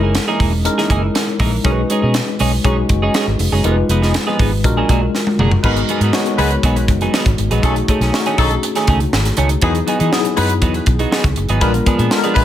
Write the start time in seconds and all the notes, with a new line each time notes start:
Already playing: F#1 G#3 C#4 D#4 E4 G#4 A#4 C#5
0.03 E3 A#3 D#4 G#4
0.15 snare, closed hi-hat
0.28 E3 A#3 D#4 G#4
0.40 E1 E3 A#3 D#4 G#4, kick, open hi-hat
0.53 muted clean electric guitar stroke
0.64 G#3 C#4 D#4 E4 A#4, muted clean electric guitar stroke, closed hi-hat
0.78 E3 A#3 D#4 G#4, snare
0.90 F#1 E3 A#3 D#4 G#4, kick, closed hi-hat
1.03 muted clean electric guitar stroke
1.14 muted clean electric guitar stroke, snare, closed hi-hat
1.27 muted clean electric guitar stroke
1.39 A#1 E3 A#3 D#4 G#4, kick, open hi-hat
1.52 muted clean electric guitar stroke
1.64 B1 G#3 C#4 D#4 F#4 G#4 A#4, kick, closed hi-hat
1.71 B4
1.90 G#3 C#4 D#4 G#4, closed hi-hat
2.02 B2 G#3 C#4 D#4 G#4
2.14 snare, closed hi-hat
2.28 muted clean electric guitar stroke
2.39 B1 G#3 C#4 D#4 G#4, open hi-hat
2.53 muted clean electric guitar stroke
2.64 B1 G#3 C#4 D#4 F#4 G#4, kick, closed hi-hat
2.78 muted clean electric guitar stroke
2.89 F#1, muted clean electric guitar stroke, kick, closed hi-hat
3.02 G#3 C#4 D#4 G#4
3.14 G#3 C#4 D#4 G#4, snare, closed hi-hat
3.27 G#1, muted clean electric guitar stroke
3.39 F1, muted clean electric guitar stroke, open hi-hat
3.52 F#1 G#3 C#4 D#4 G#4
3.64 F1 F3 G#3 B3 D#4 F4 G4 G#4 A#4, closed hi-hat
3.71 B4
3.77 muted clean electric guitar stroke
3.89 F1 F3 B3 D#4 G#4, closed hi-hat
4.02 F3 B3 D#4 G#4, snare
4.14 muted clean electric guitar stroke, snare, closed hi-hat
4.27 F3 B3 D#4 G#4
4.39 G#1 F3 B3 D#4 G#4, kick, open hi-hat
4.52 muted clean electric guitar stroke
4.64 A#1 G#3 D4 F4 F#4 A#4, muted clean electric guitar stroke, kick, closed hi-hat
4.77 F#3 A#3 D4 G#4
4.89 B1 F#3 A#3 D4 G#4, kick, closed hi-hat
5.02 muted clean electric guitar stroke
5.15 muted clean electric guitar stroke, snare
5.27 muted clean electric guitar stroke, high tom
5.38 F#1 F#3 A#3 D4 G#4, mid tom
5.51 muted clean electric guitar stroke, floor tom
5.63 G#1 F#3 G#3 B3 D#4 F#4 G#4 A#4 B4, kick, crash
5.77 closed hi-hat
5.89 F#3 B3 D#4 G#4, closed hi-hat
6.00 G#2 F#3 B3 D#4 G#4, closed hi-hat
6.13 G#3 B3 D#4 F#4 C#5, muted clean electric guitar stroke, snare
6.26 muted clean electric guitar stroke, closed hi-hat
6.37 C#2 F#3 G#3 B3 D#4 F#4 G#4 B4, open hi-hat
6.51 muted clean electric guitar stroke, closed hi-hat
6.63 B1 F#3 B3 D#4 G#4, kick, closed hi-hat
6.76 muted clean electric guitar stroke, closed hi-hat
6.88 F#1, muted clean electric guitar stroke, kick, closed hi-hat
7.01 F#3 B3 D#4 G#4, closed hi-hat
7.14 F#3 B3 D#4 G#4, snare
7.26 G#1, muted clean electric guitar stroke, kick, closed hi-hat
7.38 G#1, muted clean electric guitar stroke, closed hi-hat
7.51 A#1 F#3 B3 D#4 G#4, closed hi-hat
7.63 B1 D#3 F#3 A3 C#4 D#4 F#4 G#4 A4, kick, closed hi-hat
7.76 muted clean electric guitar stroke, closed hi-hat
7.88 D#3 A3 C#4 G#4, kick, closed hi-hat
8.00 B1 D#3 A3 C#4 G#4, snare, closed hi-hat
8.13 A3 C#4 D4 F#4 G#4, snare
8.19 D#4
8.26 D#3 A3 C#4 G#4, closed hi-hat
8.38 B1 D#3 F#3 A3 C#4 D#4 G#4 A4, kick, open hi-hat
8.51 muted clean electric guitar stroke, closed hi-hat
8.63 muted clean electric guitar stroke, closed hi-hat
8.75 D#3 A3 C#4 G#4, snare, closed hi-hat
8.87 C#2 D#3 A3 C#4 G#4, kick, closed hi-hat
9.00 muted clean electric guitar stroke, closed hi-hat
9.13 G#1, muted clean electric guitar stroke, snare
9.25 muted clean electric guitar stroke, snare, closed hi-hat
9.37 C#2 D#3 A3 C#4 G#4, closed hi-hat
9.49 muted clean electric guitar stroke, closed hi-hat
9.62 E2 D#3 F#3 B3 D#4 E4 G#4, kick, closed hi-hat
9.75 closed hi-hat
9.87 F#3 B3 D#4 G#4, closed hi-hat
9.99 E3 F#3 B3 D#4 G#4, closed hi-hat
10.12 F#3 B3 D#4 E4 G#4, muted clean electric guitar stroke, snare
10.25 muted clean electric guitar stroke, closed hi-hat
10.36 F#2 F#3 G#3 B3 D#4 F#4 G#4 B4, open hi-hat
10.49 muted clean electric guitar stroke, closed hi-hat
10.62 E2 F#3 B3 D#4 G#4, kick, closed hi-hat
10.74 muted clean electric guitar stroke, closed hi-hat
10.86 B1, muted clean electric guitar stroke, kick, closed hi-hat
10.99 F#3 B3 D#4 G#4, closed hi-hat
11.11 F#3 B3 D#4 G#4, snare
11.24 C#2, muted clean electric guitar stroke, kick, closed hi-hat
11.36 F#1, muted clean electric guitar stroke, closed hi-hat
11.49 G#1 F#3 B3 D#4 G#4, closed hi-hat
11.60 A#1 F3 G#3 B3 D4 F4 G#4 A#4 B4, kick, closed hi-hat
11.74 muted clean electric guitar stroke, closed hi-hat
11.86 F3 B3 D4 G#4, kick, closed hi-hat
11.99 A#2 F3 B3 D4 G#4, closed hi-hat
12.11 G#3 B3 D4 F4 A4, muted clean electric guitar stroke, snare
12.18 A#4
12.24 F3 B3 D4 G#4, closed hi-hat
12.34 A#1 F3 G#3 B3 D4 F4 G#4 B4, kick, open hi-hat